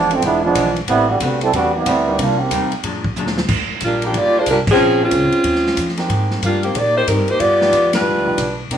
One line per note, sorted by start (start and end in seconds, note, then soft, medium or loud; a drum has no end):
0.00 0.22 F1 medium
0.00 0.12 E3 medium
0.00 0.11 F3 medium
0.00 0.10 G#3 medium
0.00 0.13 G#3 medium
0.00 0.11 B3 medium
0.00 0.11 D4 medium
0.00 0.13 D4 medium
0.00 0.13 F4 medium
0.11 0.25 D3 medium
0.11 0.25 F3 medium
0.11 0.25 A3 medium
0.11 0.24 C4 medium
0.11 ride soft
0.22 0.55 E1 medium
0.22 0.45 E3 medium
0.22 0.43 G#3 medium
0.22 0.46 G#3 soft
0.22 0.43 B3 medium
0.22 0.43 D4 medium
0.22 0.46 D4 soft
0.22 0.43 E4 medium
0.22 kick soft
0.22 ride medium
0.26 0.47 F4 soft
0.43 0.54 F3 medium
0.43 0.74 F3 medium
0.43 0.54 G#3 medium
0.43 0.75 G#3 medium
0.43 0.54 B3 medium
0.43 0.75 B3 medium
0.43 0.55 D4 medium
0.43 0.74 D4 medium
0.43 0.55 F4 medium
0.55 0.87 B1 medium
0.55 0.78 E3 medium
0.55 0.78 G#3 medium
0.55 0.79 D4 medium
0.55 0.79 F4 medium
0.55 kick soft
0.55 hi-hat pedal medium
0.55 ride medium
0.76 ride soft
0.88 1.20 A1 medium
0.88 1.07 G3 medium
0.88 1.10 A3 soft
0.88 1.07 A3 medium
0.88 1.07 B3 medium
0.88 1.08 C4 medium
0.88 1.07 C4 medium
0.88 1.11 C4 soft
0.88 1.08 E4 medium
0.88 1.11 G4 soft
0.88 1.11 B4 soft
0.88 kick soft
0.88 ride medium
1.09 1.19 D3 medium
1.09 1.20 G3 medium
1.09 1.20 B3 medium
1.09 1.20 F#4 medium
1.20 1.52 C2 medium
1.20 1.40 D3 medium
1.20 1.40 G3 medium
1.20 1.43 A3 medium
1.20 1.40 B3 medium
1.20 1.44 C4 medium
1.20 1.41 F#4 medium
1.20 1.43 G4 medium
1.20 1.44 B4 medium
1.20 kick soft
1.20 hi-hat pedal medium
1.20 ride medium
1.41 1.53 G3 medium
1.41 1.53 C4 medium
1.41 1.53 E4 medium
1.41 1.53 A4 loud
1.41 ride soft
1.53 1.85 E2 medium
1.53 1.73 D3 medium
1.53 1.73 G3 medium
1.53 1.76 A3 soft
1.53 1.73 B3 medium
1.53 1.76 C4 soft
1.53 1.73 F#4 loud
1.53 1.76 G4 medium
1.53 1.77 B4 medium
1.53 kick soft
1.53 ride medium
1.74 2.16 G3 medium
1.74 2.16 B3 medium
1.74 2.16 C4 medium
1.74 2.16 E4 medium
1.86 2.17 D2 medium
1.86 2.08 A3 medium
1.86 2.09 C4 medium
1.86 2.09 G4 medium
1.86 2.09 B4 medium
1.86 kick soft
1.86 hi-hat pedal medium
1.86 ride medium
2.07 2.18 G3 medium
2.07 2.18 A#3 medium
2.07 2.18 C4 medium
2.07 2.18 D4 medium
2.07 2.19 D#4 medium
2.19 2.50 C2 medium
2.19 2.40 C3 soft
2.19 2.40 G3 medium
2.19 2.41 G3 soft
2.19 2.39 A#3 medium
2.19 2.41 A#3 soft
2.19 2.40 D4 medium
2.19 2.42 D#4 soft
2.19 2.40 F4 medium
2.19 kick soft
2.19 ride medium
2.40 2.72 D#3 medium
2.40 2.72 A#3 medium
2.40 2.72 C4 medium
2.40 2.72 G4 medium
2.51 2.70 D#2 medium
2.51 2.73 C3 medium
2.51 2.73 G3 medium
2.51 2.74 A#3 medium
2.51 2.74 D#4 medium
2.51 kick soft
2.51 hi-hat pedal medium
2.51 ride medium
2.71 muted upright bass stroke soft
2.71 ride soft
2.83 3.15 F#2 medium
2.83 3.06 A#2 medium
2.83 3.06 F#3 medium
2.83 3.06 G#3 medium
2.83 3.07 D4 medium
2.83 kick soft
2.83 ride medium
3.04 kick medium
3.16 3.48 D2 medium
3.16 3.39 A#2 medium
3.16 3.39 F#3 medium
3.16 3.39 G#3 medium
3.16 3.40 D4 medium
3.16 hi-hat pedal medium
3.27 snare medium
3.38 snare medium
3.48 3.68 D#2 medium
3.48 kick medium
3.48 crash medium
3.70 muted upright bass stroke soft
3.80 4.13 A#1 medium
3.80 4.02 G3 medium
3.80 kick soft
3.80 hi-hat pedal medium
3.80 ride medium
3.85 4.03 A#3 medium
3.85 4.02 D4 medium
3.85 4.02 F4 medium
4.02 4.15 F3 medium
4.02 4.45 G3 medium
4.02 4.45 A#3 medium
4.02 4.15 A#3 medium
4.02 4.45 D4 soft
4.02 4.15 D4 medium
4.02 4.45 D#4 medium
4.02 4.45 F4 medium
4.02 4.15 G4 medium
4.02 ride soft
4.14 4.46 G1 medium
4.14 kick soft
4.14 ride medium
4.18 4.37 A#3 medium
4.18 4.37 F4 medium
4.18 4.37 G4 medium
4.18 4.37 D5 loud
4.38 4.49 G#3 medium
4.38 4.49 D4 medium
4.38 4.49 F4 medium
4.38 4.49 C5 medium
4.46 4.78 C2 medium
4.46 4.59 G3 medium
4.46 4.59 F4 medium
4.46 kick soft
4.46 hi-hat pedal medium
4.46 ride medium
4.50 4.59 D4 medium
4.50 4.59 A#4 medium
4.67 5.00 F3 medium
4.67 5.00 C4 medium
4.67 5.00 G#4 loud
4.67 kick medium
4.67 crash medium
4.72 5.00 C#4 medium
4.78 5.10 A#1 medium
5.01 5.11 G#3 medium
5.01 5.43 G#3 medium
5.01 5.11 A#3 medium
5.01 5.11 C4 medium
5.01 5.96 C4 medium
5.01 5.12 C#4 medium
5.01 5.96 C#4 medium
5.01 5.12 F4 medium
5.01 5.96 F4 medium
5.11 5.31 C#2 medium
5.11 kick soft
5.11 hi-hat pedal medium
5.11 ride medium
5.32 muted upright bass stroke soft
5.32 ride soft
5.44 5.76 D#2 medium
5.44 kick soft
5.44 ride medium
5.55 snare soft
5.67 snare medium
5.77 6.09 F2 medium
5.77 kick soft
5.77 hi-hat pedal soft
5.77 ride medium
5.88 snare soft
5.97 6.40 G#3 medium
5.97 6.40 A#3 medium
5.97 6.40 C4 medium
5.97 6.40 D#4 medium
5.97 6.41 G4 medium
5.97 snare soft
5.97 ride soft
6.09 6.41 G#2 medium
6.09 kick soft
6.09 ride medium
6.31 snare soft
6.42 6.74 G2 medium
6.42 6.63 G3 medium
6.42 6.63 A#3 medium
6.42 6.63 D4 medium
6.42 6.63 F4 medium
6.42 kick soft
6.42 hi-hat pedal medium
6.42 ride medium
6.63 6.75 D#3 medium
6.63 6.75 A#3 medium
6.63 6.75 C4 medium
6.63 6.75 G4 medium
6.63 ride soft
6.75 7.06 A#2 medium
6.75 6.95 A#3 medium
6.75 6.95 D#4 medium
6.75 6.95 G4 medium
6.75 6.96 D5 medium
6.75 kick soft
6.75 ride medium
6.96 7.07 A#3 medium
6.96 7.07 D#4 medium
6.96 7.07 G4 medium
6.96 7.07 C5 medium
7.08 7.18 G#2 medium
7.08 7.27 G3 medium
7.08 7.27 C4 medium
7.08 7.27 D#4 medium
7.08 7.27 A#4 medium
7.08 kick soft
7.08 hi-hat pedal medium
7.08 ride medium
7.18 7.28 G2 medium
7.28 7.39 D#2 medium
7.28 7.40 A#3 medium
7.28 7.40 D#4 medium
7.28 7.39 G4 medium
7.28 7.41 C5 loud
7.28 ride soft
7.40 7.72 G2 medium
7.40 7.94 B3 medium
7.40 7.92 F4 medium
7.40 7.93 G4 medium
7.40 7.93 D5 loud
7.40 kick soft
7.40 ride medium
7.61 7.72 F3 medium
7.61 7.72 B3 medium
7.61 7.72 D4 medium
7.61 7.72 D#4 medium
7.61 7.73 G4 medium
7.61 snare medium
7.73 8.04 F2 medium
7.73 kick soft
7.73 hi-hat pedal medium
7.73 ride medium
7.93 8.55 G3 medium
7.93 8.55 D4 medium
7.93 8.55 F4 medium
7.93 8.55 B4 medium
7.93 snare medium
7.93 ride medium
8.05 8.15 D#2 medium
8.15 8.26 D2 medium
8.26 8.37 B1 medium
8.26 8.37 F3 medium
8.26 8.37 B3 medium
8.26 8.37 D4 medium
8.26 8.37 D#4 medium
8.26 8.38 G4 medium
8.38 8.69 B1 medium
8.38 kick soft
8.38 hi-hat pedal medium
8.38 ride medium
8.71 8.78 C2 medium
8.71 8.78 C3 soft
8.71 8.78 D#3 soft
8.71 8.78 A#3 medium
8.71 8.78 A#3 soft
8.71 8.78 C4 medium
8.71 8.78 D4 medium
8.71 8.78 D4 soft
8.71 8.78 D#4 medium
8.71 8.78 G4 medium
8.71 kick soft
8.71 ride medium